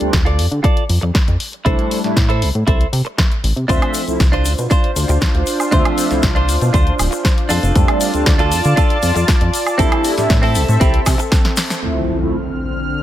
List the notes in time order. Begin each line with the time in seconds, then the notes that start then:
0.00 D2 G3 A3 C4 D4, closed hi-hat
0.13 D2, kick, snare, closed hi-hat
0.25 F4 A4 D5, closed hi-hat
0.38 F2, open hi-hat
0.51 D3, closed hi-hat
0.63 F4 A4 D5, kick, closed hi-hat
0.77 closed hi-hat
0.89 F2, open hi-hat
1.01 F2, muted clean electric guitar stroke
1.14 muted clean electric guitar stroke, kick, snare, closed hi-hat
1.28 F2, closed hi-hat
1.40 open hi-hat
1.53 closed hi-hat
1.65 C2 G3 A3 D4 E4 A4 C5, kick, closed hi-hat
1.79 closed hi-hat
1.91 open hi-hat
2.04 A2 G3 A3 D4 E4, snare, closed hi-hat
2.17 A2, kick, snare, closed hi-hat
2.29 E4 A4 C5, closed hi-hat
2.42 C2, open hi-hat
2.55 A2, closed hi-hat
2.67 C2 E4 A4 C5, kick, closed hi-hat
2.81 closed hi-hat
2.93 C3, open hi-hat
3.05 muted clean electric guitar stroke, closed hi-hat
3.17 muted clean electric guitar stroke, kick, snare, closed hi-hat
3.32 closed hi-hat
3.44 A1, open hi-hat
3.56 C3, closed hi-hat
3.68 D2 F3 A3 C4 D4 F4 C5 E5, kick, closed hi-hat, shaker
3.82 closed hi-hat, high woodblock
3.94 open hi-hat, shaker
4.07 C2 F3 A3 C4 E4, closed hi-hat, shaker
4.20 C2, kick, snare, closed hi-hat, shaker
4.32 D4 F4 C5, closed hi-hat
4.45 D2, open hi-hat, shaker
4.58 B2, closed hi-hat, shaker
4.70 D4 F4 C5, kick, closed hi-hat, shaker
4.84 closed hi-hat
4.96 D2, open hi-hat, shaker
5.08 D2, muted clean electric guitar stroke, closed hi-hat, shaker
5.21 muted clean electric guitar stroke, kick, snare, closed hi-hat, shaker
5.35 D2, closed hi-hat
5.47 open hi-hat, shaker
5.60 closed hi-hat, high woodblock, shaker
5.71 D2 F3 A3 C4 D4 F4 C5 E5, kick, closed hi-hat, shaker
5.85 closed hi-hat, high woodblock
5.98 open hi-hat, shaker
6.10 C2 F3 A3 C4 E4, snare, closed hi-hat, shaker
6.22 C2, kick, snare, closed hi-hat, shaker
6.35 D4 F4 C5, closed hi-hat
6.49 D2, open hi-hat, shaker
6.61 B2, closed hi-hat, shaker
6.73 D2 D4 F4 C5, kick, closed hi-hat, shaker
6.87 closed hi-hat
6.99 D1, open hi-hat, high woodblock, shaker
7.11 muted clean electric guitar stroke, closed hi-hat, shaker
7.24 muted clean electric guitar stroke, kick, snare, closed hi-hat, shaker
7.38 closed hi-hat
7.49 F2 D4 F4 A4 D5 A5, open hi-hat, shaker
7.63 F1, closed hi-hat, shaker
7.75 F2 G3 A3 C4 D4, kick, closed hi-hat, shaker
7.88 closed hi-hat, high woodblock
8.01 open hi-hat, shaker
8.13 D2 G3 A3 C4 D4, closed hi-hat, shaker
8.26 D2, kick, snare, closed hi-hat, shaker
8.38 D4 F4 A4, closed hi-hat
8.52 F2, open hi-hat, shaker
8.64 D3, closed hi-hat, shaker
8.76 D4 F4 A4, kick, closed hi-hat, shaker
8.90 closed hi-hat
9.03 F2, open hi-hat, shaker
9.15 F2, muted clean electric guitar stroke, closed hi-hat, shaker
9.27 muted clean electric guitar stroke, kick, snare, closed hi-hat, shaker
9.41 F2, closed hi-hat
9.53 open hi-hat, shaker
9.67 closed hi-hat, high woodblock, shaker
9.78 C2 G3 A3 C4 D4 E4 A4 E5, kick, closed hi-hat, shaker
9.92 closed hi-hat, high woodblock
10.05 open hi-hat, shaker
10.17 A2 G3 A3 D4 E4, snare, closed hi-hat, shaker
10.30 A2, kick, snare, closed hi-hat, shaker
10.42 C4 E4 A4, open hi-hat
10.55 C2, open hi-hat, shaker
10.69 A2, closed hi-hat, shaker
10.80 C2 C4 E4 G4, kick, closed hi-hat, shaker
10.94 closed hi-hat
11.06 C3, kick, snare, open hi-hat, high woodblock, shaker
11.18 muted clean electric guitar stroke, closed hi-hat, shaker
11.31 muted clean electric guitar stroke, kick, snare, closed hi-hat, shaker
11.45 snare, closed hi-hat
11.57 snare, open hi-hat, shaker
11.70 snare, closed hi-hat, shaker
11.82 D2 D3 F3 A3 C4 E4 F6, impact
12.20 D2 F3 A3 C4 E4